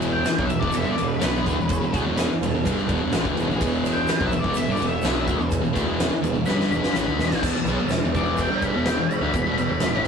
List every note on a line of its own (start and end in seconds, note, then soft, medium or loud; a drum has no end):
0.00 0.23 E1 medium
0.00 0.23 E2 loud
0.00 0.25 B2 loud
0.00 0.26 E3 loud
0.00 ride medium
0.00 shaker medium
0.05 0.19 E4 medium
0.05 0.19 G#4 medium
0.05 0.19 B4 medium
0.12 0.42 G5 loud
0.24 0.43 G#4 medium
0.24 muted distorted electric guitar stroke medium
0.24 snare loud
0.24 ride medium
0.24 shaker medium
0.29 0.43 E4 medium
0.29 0.43 B4 medium
0.38 0.50 B1 loud
0.38 0.49 B2 medium
0.38 0.50 F#3 medium
0.38 kick loud
0.44 0.60 E5 medium
0.49 0.62 E1 medium
0.49 0.59 E2 medium
0.49 0.61 B2 medium
0.49 ride medium
0.49 shaker medium
0.53 0.67 E4 medium
0.53 0.67 G#4 medium
0.53 0.68 B4 medium
0.60 0.74 E1 loud
0.60 0.72 E2 medium
0.60 0.71 B2 loud
0.60 0.77 D5 medium
0.60 kick loud
0.72 0.86 E1 medium
0.72 0.82 E2 medium
0.72 0.85 B2 medium
0.72 0.90 G#4 medium
0.72 ride medium
0.72 shaker loud
0.76 0.90 E4 medium
0.76 0.91 B4 medium
0.76 0.91 E5 medium
0.82 0.95 G2 medium
0.82 0.96 D3 loud
0.82 shaker soft
0.87 0.98 G1 medium
0.87 1.06 D5 medium
0.96 1.21 E1 medium
0.96 1.16 E2 medium
0.96 1.16 B2 medium
0.96 ride medium
0.96 shaker medium
1.00 1.14 E4 medium
1.00 1.14 G#4 medium
1.00 1.14 D5 medium
1.07 1.99 B4 medium
1.20 1.45 B1 medium
1.20 1.44 B2 medium
1.20 1.45 F#3 medium
1.20 1.45 B3 loud
1.20 snare loud
1.20 ride medium
1.20 shaker loud
1.24 1.38 E4 medium
1.24 1.39 G#4 medium
1.24 1.39 B4 medium
1.36 shaker soft
1.45 1.57 D2 loud
1.45 1.56 D3 medium
1.45 1.58 A3 medium
1.45 1.61 E4 medium
1.45 1.60 G#4 medium
1.45 1.61 B4 medium
1.45 kick loud
1.45 ride medium
1.45 shaker medium
1.57 1.80 E1 medium
1.57 1.77 E2 medium
1.57 1.77 B2 medium
1.57 shaker soft
1.69 1.85 E4 loud
1.69 1.86 G#4 loud
1.69 1.85 C#5 loud
1.69 kick loud
1.69 ride medium
1.69 shaker loud
1.81 1.93 E1 medium
1.81 1.93 E2 medium
1.81 1.93 B2 medium
1.92 2.05 D2 loud
1.92 2.05 D3 medium
1.92 2.05 A3 loud
1.92 2.08 E4 medium
1.92 2.08 G#4 medium
1.92 2.09 C#5 loud
1.92 kick loud
1.92 snare soft
1.92 ride medium
1.92 shaker medium
2.05 2.27 E1 medium
2.05 2.29 E2 medium
2.05 2.30 B2 medium
2.05 2.30 E3 loud
2.17 2.33 E4 medium
2.17 2.33 G#4 medium
2.17 2.33 B4 loud
2.17 snare loud
2.17 ride loud
2.17 shaker loud
2.31 muted distorted electric guitar stroke medium
2.41 2.51 E1 medium
2.41 2.54 E2 medium
2.41 2.54 B2 medium
2.41 2.56 E4 loud
2.41 2.57 G#4 medium
2.41 2.57 B4 loud
2.41 ride medium
2.41 shaker medium
2.52 2.64 E1 medium
2.52 2.65 E2 medium
2.52 2.66 B2 medium
2.62 2.88 G1 medium
2.62 2.88 G2 medium
2.62 2.79 E4 loud
2.62 2.79 G#4 medium
2.62 2.79 B4 loud
2.62 kick loud
2.62 shaker loud
2.67 2.89 D3 medium
2.67 2.90 G3 loud
2.67 ride loud
2.78 shaker soft
2.85 3.02 E4 medium
2.85 3.02 G#4 medium
2.85 3.03 B4 loud
2.89 2.99 E1 medium
2.89 3.00 E2 medium
2.89 3.01 B2 medium
2.89 kick loud
2.89 ride medium
3.00 3.10 G1 medium
3.00 3.12 G2 loud
3.00 3.13 D3 medium
3.10 3.23 A1 medium
3.10 3.26 E4 medium
3.10 3.27 G#4 medium
3.10 3.26 B4 loud
3.10 snare loud
3.10 ride medium
3.10 shaker medium
3.16 3.25 A2 loud
3.16 3.26 E3 loud
3.25 3.35 D2 medium
3.25 3.37 D3 medium
3.25 3.37 A3 loud
3.25 kick medium
3.25 shaker soft
3.32 3.47 E1 medium
3.32 3.49 E4 medium
3.32 3.49 G#4 medium
3.32 3.49 B4 loud
3.37 3.49 E2 medium
3.37 3.50 B2 loud
3.37 ride medium
3.37 shaker medium
3.48 3.59 A1 loud
3.48 3.61 A2 medium
3.48 shaker soft
3.52 3.61 E3 loud
3.52 3.73 E4 loud
3.52 3.73 G#4 loud
3.56 3.73 B4 loud
3.61 4.05 E1 medium
3.61 4.07 E2 loud
3.61 4.09 B2 loud
3.61 kick loud
3.61 ride loud
3.61 shaker medium
3.65 4.10 E3 loud
3.74 shaker soft
3.81 3.98 E4 medium
3.81 3.98 G#4 medium
3.81 3.98 B4 medium
3.81 shaker medium
3.86 snare soft
3.86 ride medium
3.93 4.23 G5 loud
4.06 4.23 E4 medium
4.06 4.22 G#4 medium
4.06 4.23 B4 medium
4.06 muted distorted electric guitar stroke soft
4.06 muted picked electric bass stroke soft
4.06 snare loud
4.06 ride medium
4.06 shaker loud
4.19 4.32 B1 medium
4.19 4.31 B2 medium
4.19 4.32 F#3 loud
4.19 kick medium
4.25 4.45 E4 medium
4.25 4.45 B4 medium
4.25 4.39 E5 medium
4.29 4.43 E1 medium
4.29 4.41 E2 medium
4.29 4.44 B2 medium
4.29 4.46 G#4 medium
4.29 ride medium
4.29 shaker medium
4.39 4.54 E2 medium
4.39 4.57 D5 medium
4.44 4.54 E1 medium
4.44 4.56 B2 loud
4.44 kick medium
4.49 4.67 E4 medium
4.49 4.67 G#4 medium
4.49 4.67 B4 medium
4.54 4.66 E1 medium
4.54 4.67 E2 medium
4.54 4.69 B2 medium
4.54 4.72 E5 medium
4.54 ride loud
4.54 shaker loud
4.67 4.79 G1 medium
4.67 4.79 G2 medium
4.67 4.80 D3 loud
4.72 4.92 E4 medium
4.72 4.93 B4 medium
4.72 4.86 D5 medium
4.76 5.02 E1 medium
4.76 4.93 G#4 medium
4.76 shaker medium
4.81 5.00 E2 medium
4.81 5.00 B2 medium
4.81 ride medium
4.87 5.49 E5 loud
5.00 5.25 B1 medium
5.00 5.26 B2 loud
5.00 5.17 E4 medium
5.00 5.17 G#4 medium
5.00 5.18 B4 medium
5.00 shaker loud
5.05 5.27 F#3 medium
5.05 5.27 B3 medium
5.05 snare loud
5.05 ride medium
5.15 shaker soft
5.23 5.40 E4 medium
5.23 5.41 G#4 medium
5.23 5.40 B4 medium
5.27 5.39 D2 loud
5.27 5.38 D3 medium
5.27 5.39 A3 medium
5.27 kick loud
5.27 ride medium
5.27 shaker medium
5.38 5.61 E1 medium
5.38 5.58 E2 medium
5.38 5.58 B2 medium
5.38 shaker soft
5.48 5.65 E4 loud
5.48 5.65 G#4 loud
5.48 5.65 B4 loud
5.48 shaker loud
5.52 kick loud
5.52 ride medium
5.62 5.74 E1 medium
5.62 5.74 E2 medium
5.62 5.73 B2 medium
5.62 shaker soft
5.72 5.85 D3 medium
5.72 5.85 A3 medium
5.72 5.88 E4 medium
5.72 5.89 G#4 medium
5.72 5.89 B4 medium
5.72 kick loud
5.76 5.86 D2 loud
5.76 snare soft
5.76 ride medium
5.76 shaker medium
5.86 6.09 E1 loud
5.86 6.09 E2 loud
5.86 6.10 B2 loud
5.86 6.11 E3 loud
5.96 6.14 E4 medium
5.96 6.13 G#4 medium
5.96 6.13 B4 medium
5.96 shaker loud
6.00 snare loud
6.00 ride loud
6.10 muted distorted electric guitar stroke medium
6.10 muted picked electric bass stroke soft
6.22 6.34 E1 medium
6.22 6.33 E2 medium
6.22 6.33 B2 medium
6.22 6.38 E4 loud
6.22 6.38 G#4 medium
6.22 6.38 B4 loud
6.22 ride medium
6.22 shaker medium
6.34 6.46 E1 medium
6.34 6.45 E2 medium
6.34 6.46 B2 medium
6.34 shaker soft
6.45 6.69 G1 medium
6.45 6.69 G2 loud
6.45 6.70 D3 loud
6.45 6.70 G3 loud
6.45 6.62 E4 medium
6.45 6.62 G#4 medium
6.45 6.63 B4 loud
6.45 6.70 B5 loud
6.45 snare medium
6.45 shaker medium
6.61 snare medium
6.70 6.82 E1 medium
6.70 6.82 E2 medium
6.70 6.82 B2 loud
6.70 6.87 E4 medium
6.70 6.87 G#4 medium
6.70 6.87 B4 medium
6.70 6.93 B5 medium
6.70 shaker medium
6.82 6.93 G1 loud
6.82 6.93 G2 medium
6.82 6.94 D3 loud
6.82 snare medium
6.82 shaker soft
6.94 7.06 A1 medium
6.94 7.06 A2 loud
6.94 7.06 E3 loud
6.94 7.09 E4 medium
6.94 7.09 G#4 medium
6.94 7.10 B4 medium
6.94 7.41 B5 loud
6.94 snare medium
6.94 shaker medium
7.07 7.18 D2 medium
7.07 7.18 D3 medium
7.07 7.19 A3 medium
7.07 shaker soft
7.19 7.29 E1 loud
7.19 7.30 E2 loud
7.19 7.31 B2 medium
7.19 7.34 E4 medium
7.19 7.34 G#4 medium
7.19 7.34 B4 medium
7.19 snare medium
7.19 shaker medium
7.30 7.41 A1 medium
7.30 7.42 A2 medium
7.30 7.43 E3 loud
7.30 snare medium
7.30 shaker soft
7.41 7.53 E1 medium
7.41 7.54 E2 loud
7.41 7.55 B2 loud
7.41 7.57 E4 loud
7.41 7.57 G#4 medium
7.41 7.57 B4 loud
7.41 kick loud
7.41 crash loud
7.41 crash medium
7.41 shaker medium
7.53 muted picked electric bass stroke soft
7.53 muted distorted electric guitar stroke medium
7.64 7.76 B1 loud
7.64 7.80 E4 medium
7.64 7.81 G#4 medium
7.64 7.80 B4 medium
7.64 crash medium
7.64 shaker medium
7.68 7.78 B2 medium
7.68 7.79 F#3 medium
7.76 7.99 E1 medium
7.81 7.99 E2 medium
7.81 7.99 B2 medium
7.89 8.05 E4 medium
7.89 8.05 G#4 medium
7.89 8.05 B4 loud
7.89 snare loud
7.89 crash medium
7.89 shaker medium
8.02 8.13 E1 medium
8.02 8.14 E2 medium
8.02 8.14 B2 medium
8.11 8.49 E2 medium
8.11 8.28 E4 medium
8.11 8.28 G#4 medium
8.11 8.28 B4 medium
8.11 8.38 D5 medium
8.11 kick medium
8.11 crash medium
8.11 shaker medium
8.15 8.48 E1 loud
8.15 8.50 B2 medium
8.15 8.51 E3 medium
8.25 shaker soft
8.34 8.52 E4 medium
8.34 8.52 G#4 medium
8.34 8.51 B4 loud
8.34 shaker medium
8.39 8.62 G5 medium
8.39 kick medium
8.39 crash medium
8.49 8.71 G1 medium
8.49 8.73 G2 medium
8.49 8.73 D3 loud
8.49 8.74 G3 medium
8.61 8.77 E4 medium
8.61 8.77 G#4 medium
8.61 8.77 B4 medium
8.61 8.86 B5 medium
8.61 kick medium
8.61 crash medium
8.61 shaker medium
8.71 8.95 E1 medium
8.71 8.97 E2 medium
8.76 8.97 B2 loud
8.76 8.98 E3 loud
8.83 9.00 E4 medium
8.83 9.00 G#4 medium
8.83 9.00 B4 medium
8.83 9.13 G5 medium
8.83 snare loud
8.83 crash medium
8.83 shaker medium
8.96 9.19 E1 medium
8.96 9.17 E2 medium
8.96 9.17 B2 medium
9.08 9.24 E4 medium
9.08 9.24 G#4 medium
9.08 9.24 C#5 medium
9.08 crash medium
9.08 shaker medium
9.13 9.58 B5 medium
9.21 9.32 D2 medium
9.21 9.33 D3 loud
9.21 9.33 A3 medium
9.32 9.44 E1 medium
9.32 9.45 E2 medium
9.32 9.46 B2 medium
9.32 9.49 E4 loud
9.32 9.48 G#4 medium
9.32 9.48 B4 loud
9.32 kick loud
9.32 crash medium
9.32 shaker medium
9.45 9.56 E1 loud
9.45 9.57 E2 loud
9.45 9.58 B2 loud
9.57 9.69 E1 medium
9.57 9.69 E2 medium
9.57 9.69 B2 medium
9.57 9.73 E4 medium
9.57 9.73 G#4 medium
9.57 9.73 B4 medium
9.57 10.05 B5 loud
9.57 crash medium
9.57 shaker medium
9.69 9.80 E1 medium
9.69 9.82 E2 medium
9.69 9.82 B2 medium
9.80 9.93 E1 medium
9.80 9.94 E2 medium
9.80 9.96 E4 medium
9.80 9.96 G#4 medium
9.80 9.96 B4 medium
9.80 snare loud
9.80 crash medium
9.80 shaker medium
9.84 9.94 B2 medium
9.94 10.05 A1 medium
9.94 10.05 A2 medium
9.94 10.06 E3 loud
10.03 10.08 E4 medium
10.03 10.08 G#4 medium
10.03 snare soft